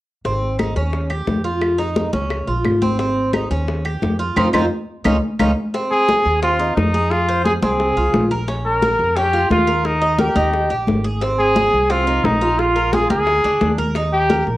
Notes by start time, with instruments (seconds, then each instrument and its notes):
0.24 upright bass G#1, cuban tres C4, high bongo, high conga
0.42 high conga
0.59 cuban tres D#4, high bongo, high conga, claves
0.76 upright bass D#2, cuban tres C#4, high bongo, high conga
0.93 high bongo, high conga
1.10 cuban tres G4, high bongo, high conga, claves
1.27 upright bass F2, high bongo, low bongo, high conga
1.44 cuban tres F4, high bongo, high conga
1.62 high bongo, high conga, claves
1.78 cuban tres D#4, high bongo, high conga
1.96 high bongo, high conga
2.13 upright bass C#2, cuban tres C#4, high bongo, high conga
2.30 high bongo, high conga, claves
2.48 upright bass A#1, cuban tres F4, high conga
2.65 upright bass G#1, high bongo, low bongo, high conga, claves
2.82 cuban tres C4, high bongo, high conga
2.99 cuban tres C4, high bongo, high conga
3.16 high conga
3.33 cuban tres D#4, high bongo, high conga, claves
3.51 upright bass D#2, cuban tres C#4, high bongo, high conga
3.68 high bongo, high conga
3.85 cuban tres G4, high bongo, high conga, claves
4.02 upright bass F2, high bongo, low bongo, high conga
4.19 cuban tres F4, high bongo, high conga
4.36 upright bass F2, cuban tres C4 D#4 F4, low bongo, high conga, claves
4.53 upright bass F2, cuban tres C4 D#4 F4, low bongo, high conga, claves
5.05 upright bass C#2, cuban tres C#4 D#4 F4, low bongo, high conga, claves
5.39 upright bass C#2, cuban tres C#4 D#4 F4, low bongo, high conga, claves
5.74 cuban tres C4, high bongo, high conga
5.91 trumpet G#4, high conga
6.08 cuban tres G#4, high bongo, high conga
6.25 upright bass D#2, high bongo, high conga
6.42 cuban tres C4, trumpet F4, high bongo, high conga
6.59 cuban tres D#4, high bongo, high conga
6.76 upright bass F2, trumpet D#4, high bongo, low bongo, high conga
6.94 cuban tres G#4, high bongo, high conga
7.11 trumpet F4, high bongo, high conga
7.28 cuban tres C5, high bongo, high conga
7.45 trumpet G#4, cuban tres G#4, high bongo, high conga
7.62 upright bass C2, cuban tres C4, trumpet G#4, high bongo, high conga
7.80 high bongo, high conga
7.96 upright bass C2, cuban tres F4, high conga
8.13 upright bass A#1, high bongo, low bongo, high conga
8.31 cuban tres A#4, high bongo, high conga
8.48 cuban tres C#4, high bongo, high conga
8.65 trumpet A#4, high conga
8.82 cuban tres A#4, high bongo, high conga
8.99 upright bass F2, high bongo, high conga
9.16 cuban tres C#4, trumpet G4, high bongo, high conga
9.33 cuban tres F4, high bongo, high conga
9.50 upright bass D#2, trumpet F4, high bongo, low bongo, high conga
9.67 cuban tres A#4, high bongo, high conga
9.85 trumpet D#4, high bongo, high conga
10.02 cuban tres D#5, high bongo, high conga
10.19 trumpet G4, cuban tres A#4, high bongo, high conga
10.36 upright bass D#2, cuban tres D#4, high bongo, high conga
10.53 high bongo, high conga
10.70 upright bass A#1, cuban tres G4, high conga
10.87 upright bass G#1, high bongo, low bongo, high conga
11.04 cuban tres G#4, high bongo
11.21 cuban tres C4, high bongo, high conga
11.38 trumpet G#4, high conga
11.56 cuban tres G#4, high bongo, high conga
11.73 upright bass C2, high bongo, high conga
11.90 cuban tres C4, trumpet F4, high bongo, high conga
12.07 cuban tres D#4, high bongo, high conga
12.24 upright bass A#1, trumpet D#4, high bongo, low bongo, high conga
12.41 cuban tres F4, high bongo, high conga
12.58 trumpet F4, high bongo, high conga
12.76 cuban tres A#4, high bongo, high conga
12.93 cuban tres F4, trumpet G#4, high bongo, high conga
13.10 upright bass D2, cuban tres A#3, trumpet G#4, high bongo, high conga
13.27 high bongo, high conga
13.44 upright bass D2, cuban tres D4, high conga
13.61 upright bass D#2, high bongo, low bongo, high conga
13.78 cuban tres A#4, high bongo, high conga
13.95 cuban tres D#4, high bongo, high conga
14.13 trumpet G4, high conga
14.30 cuban tres A#4, high bongo, high conga
14.47 upright bass A#1, high bongo, high conga